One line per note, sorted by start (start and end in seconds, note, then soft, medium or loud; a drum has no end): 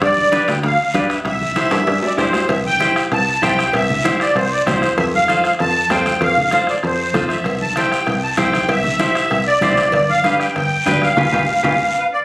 0.02 0.39 G2 loud
0.02 0.46 D5 loud
0.02 bombo low medium
0.02 bombo rim medium
0.02 high conga soft
0.02 high timbale medium
0.02 long guiro medium
0.18 high conga medium
0.32 0.54 D4 medium
0.32 0.54 G4 soft
0.32 0.54 B4 medium
0.32 bombo rim medium
0.32 high conga medium
0.32 high timbale medium
0.32 short guiro medium
0.48 0.61 D2 medium
0.48 0.56 G5 medium
0.48 bombo rim medium
0.48 high timbale medium
0.48 short guiro medium
0.63 0.76 D2 medium
0.63 0.97 F5 medium
0.63 bombo rim medium
0.63 high conga soft
0.63 high timbale medium
0.63 long guiro medium
0.94 1.19 G2 medium
0.94 1.16 D4 medium
0.94 1.17 G4 medium
0.94 1.17 B4 medium
0.94 1.03 D5 medium
0.94 bombo low medium
0.94 bombo rim medium
0.94 high conga medium
0.94 high timbale medium
0.94 low timbale medium
0.94 short guiro medium
1.10 1.19 E5 medium
1.10 bombo rim medium
1.10 high timbale medium
1.10 short guiro medium
1.25 1.63 C2 loud
1.25 2.15 E5 medium
1.25 bombo low medium
1.25 bombo rim medium
1.25 high conga soft
1.25 high timbale medium
1.25 long guiro medium
1.41 high conga medium
1.56 1.78 E4 medium
1.56 1.79 G4 medium
1.56 1.79 C5 medium
1.56 bombo rim medium
1.56 high conga medium
1.56 high timbale medium
1.56 short guiro medium
1.71 1.85 G2 medium
1.71 bombo rim medium
1.71 high timbale medium
1.71 short guiro medium
1.87 2.00 G2 medium
1.87 bombo rim medium
1.87 high conga soft
1.87 high timbale medium
1.87 long guiro medium
2.02 2.12 D5 medium
2.02 low timbale medium
2.17 2.43 G2 medium
2.17 2.40 E4 medium
2.17 2.40 G4 medium
2.17 2.41 C5 medium
2.17 2.49 C5 medium
2.17 bombo low medium
2.17 bombo rim medium
2.17 high conga medium
2.17 low timbale medium
2.17 short guiro medium
2.33 bombo rim medium
2.33 low timbale medium
2.33 short guiro medium
2.49 2.99 C2 medium
2.49 2.58 E5 medium
2.49 bombo low medium
2.49 bombo rim medium
2.49 cowbell loud
2.49 high conga soft
2.49 long guiro medium
2.65 2.95 G5 loud
2.65 high conga medium
2.80 3.02 E4 medium
2.80 3.03 G4 medium
2.80 3.03 C5 medium
2.80 bombo rim medium
2.80 cowbell medium
2.80 high conga medium
2.80 short guiro medium
2.96 3.04 G5 medium
2.96 bombo rim medium
2.96 short guiro medium
3.12 3.37 C2 medium
3.12 3.44 A5 loud
3.12 bombo rim medium
3.12 cowbell medium
3.12 high conga soft
3.12 long guiro medium
3.42 3.68 C2 medium
3.42 3.64 E4 medium
3.42 3.65 G4 medium
3.42 3.65 C5 medium
3.42 3.72 G5 loud
3.42 bombo low medium
3.42 bombo rim medium
3.42 cowbell medium
3.42 high conga medium
3.42 short guiro medium
3.59 bombo rim medium
3.59 short guiro medium
3.73 4.24 C2 medium
3.73 4.18 E5 loud
3.73 bombo low medium
3.73 bombo rim medium
3.73 cowbell loud
3.73 high conga soft
3.73 long guiro medium
3.90 low conga medium
4.04 4.26 E4 medium
4.04 4.27 G4 medium
4.04 4.27 C5 medium
4.04 bombo rim medium
4.04 cowbell medium
4.04 high conga medium
4.04 short guiro medium
4.20 4.35 D5 medium
4.20 bombo rim medium
4.20 short guiro medium
4.35 4.60 C2 medium
4.35 4.52 C5 medium
4.35 bombo rim medium
4.35 cowbell medium
4.35 high conga soft
4.35 long guiro medium
4.53 4.59 D5 medium
4.66 4.92 C2 medium
4.66 4.88 E4 medium
4.66 4.89 G4 medium
4.66 4.89 C5 medium
4.66 4.96 C5 medium
4.66 bombo low medium
4.66 bombo rim medium
4.66 cowbell medium
4.66 high conga medium
4.66 low conga medium
4.66 low timbale medium
4.66 short guiro medium
4.82 bombo rim medium
4.82 high conga medium
4.82 short guiro medium
4.98 5.47 F2 medium
4.98 5.06 E5 loud
4.98 bombo low medium
4.98 bombo rim medium
4.98 cowbell loud
4.98 high conga soft
4.98 long guiro medium
5.15 5.44 F5 loud
5.15 high conga medium
5.28 5.51 F4 medium
5.28 5.51 A4 medium
5.28 5.51 C5 medium
5.28 bombo rim medium
5.28 cowbell medium
5.28 high conga medium
5.28 short guiro medium
5.44 5.52 F5 medium
5.44 bombo rim medium
5.44 short guiro medium
5.59 5.85 F2 loud
5.59 5.89 A5 loud
5.59 bombo rim medium
5.59 cowbell medium
5.59 high conga soft
5.59 long guiro medium
5.90 6.15 F2 medium
5.90 6.13 F4 medium
5.90 6.13 A4 medium
5.90 6.13 C5 medium
5.90 6.20 G5 medium
5.90 bombo low medium
5.90 bombo rim medium
5.90 cowbell medium
5.90 high conga medium
5.90 low timbale medium
5.90 short guiro medium
6.06 bombo rim medium
6.06 high conga medium
6.06 short guiro medium
6.21 6.71 F2 loud
6.21 6.65 F5 loud
6.21 bombo low medium
6.21 bombo rim medium
6.21 cowbell loud
6.21 high conga soft
6.21 long guiro medium
6.37 low conga medium
6.51 6.74 F4 medium
6.51 6.75 A4 medium
6.51 6.75 C5 medium
6.51 bombo rim medium
6.51 cowbell medium
6.51 high conga medium
6.51 short guiro medium
6.67 6.76 D5 medium
6.67 bombo rim medium
6.67 short guiro medium
6.83 7.08 F2 medium
6.83 7.32 C5 medium
6.83 bombo rim medium
6.83 cowbell medium
6.83 high conga soft
6.83 long guiro medium
7.14 7.39 F2 medium
7.14 7.36 F4 medium
7.14 7.37 A4 medium
7.14 7.37 C5 medium
7.14 bombo low medium
7.14 bombo rim medium
7.14 cowbell medium
7.14 high conga medium
7.14 low conga medium
7.14 short guiro medium
7.29 7.59 E5 medium
7.29 bombo rim medium
7.29 high conga medium
7.29 short guiro medium
7.44 7.95 C2 loud
7.44 bombo low medium
7.44 bombo rim medium
7.44 cowbell loud
7.44 high conga soft
7.44 long guiro medium
7.61 7.76 A5 medium
7.61 high conga medium
7.76 7.99 E4 medium
7.76 7.99 G4 medium
7.76 7.99 C5 medium
7.76 8.06 G5 medium
7.76 bombo rim medium
7.76 cowbell medium
7.76 high conga medium
7.76 short guiro medium
7.92 bombo rim medium
7.92 short guiro medium
8.07 8.32 C2 medium
8.07 8.15 G5 medium
8.07 bombo rim medium
8.07 cowbell medium
8.07 high conga soft
8.07 long guiro medium
8.23 8.30 A5 medium
8.37 8.63 C2 medium
8.37 8.60 E4 medium
8.37 8.60 G4 medium
8.37 8.60 C5 medium
8.37 8.71 G5 medium
8.37 bombo low medium
8.37 bombo rim medium
8.37 cowbell medium
8.37 high conga medium
8.37 short guiro medium
8.53 bombo rim medium
8.53 high conga medium
8.53 short guiro medium
8.68 9.19 C2 medium
8.68 9.44 E5 loud
8.68 bombo low medium
8.68 bombo rim medium
8.68 cowbell loud
8.68 high conga soft
8.68 long guiro medium
8.84 high conga medium
8.84 low conga medium
8.99 9.22 E4 medium
8.99 9.22 G4 medium
8.99 9.22 C5 medium
8.99 bombo rim medium
8.99 cowbell medium
8.99 high conga medium
8.99 short guiro medium
9.15 bombo rim medium
9.15 short guiro medium
9.30 9.56 C2 loud
9.30 bombo rim medium
9.30 cowbell medium
9.30 high conga soft
9.30 long guiro medium
9.47 9.94 D5 medium
9.61 9.87 C2 medium
9.61 9.84 E4 medium
9.61 9.84 G4 medium
9.61 9.84 C5 medium
9.61 bombo low medium
9.61 bombo rim medium
9.61 cowbell medium
9.61 high conga medium
9.61 low conga medium
9.61 short guiro medium
9.77 bombo rim medium
9.77 high conga medium
9.77 short guiro medium
9.92 10.43 G1 medium
9.92 10.10 D5 medium
9.92 bombo low medium
9.92 bombo rim medium
9.92 cowbell loud
9.92 high conga soft
9.92 long guiro medium
10.09 10.38 F5 medium
10.09 high conga medium
10.24 10.46 D4 medium
10.24 10.47 G4 medium
10.24 10.47 B4 medium
10.24 bombo rim medium
10.24 cowbell medium
10.24 high conga medium
10.24 short guiro medium
10.39 10.54 G5 medium
10.39 bombo rim medium
10.39 short guiro medium
10.56 10.81 G1 medium
10.56 11.04 G5 medium
10.56 bombo rim medium
10.56 cowbell medium
10.56 high conga soft
10.56 long guiro medium
10.86 11.11 G1 medium
10.86 11.08 D4 medium
10.86 11.08 G4 medium
10.86 11.08 B4 medium
10.86 bombo low medium
10.86 bombo rim medium
10.86 cowbell medium
10.86 high conga medium
10.86 low timbale medium
10.86 short guiro medium
11.02 12.07 F5 medium
11.02 bombo rim medium
11.02 high conga medium
11.02 short guiro medium
11.17 11.29 G1 loud
11.17 11.28 F4 loud
11.17 11.27 G4 medium
11.17 11.27 B4 medium
11.17 bombo low medium
11.17 low conga loud
11.17 high timbale medium
11.17 long guiro loud
11.32 11.45 G1 loud
11.32 11.43 F4 medium
11.32 11.43 G4 medium
11.32 11.43 B4 medium
11.32 bombo low loud
11.32 low conga loud
11.32 high timbale loud
11.32 long guiro medium
11.63 11.76 G1 medium
11.63 11.74 F4 medium
11.63 11.73 G4 loud
11.63 11.73 B4 medium
11.63 bombo low loud
11.63 low conga loud
11.63 high timbale loud
11.63 long guiro medium
11.98 12.04 B4 medium
12.13 12.19 D5 medium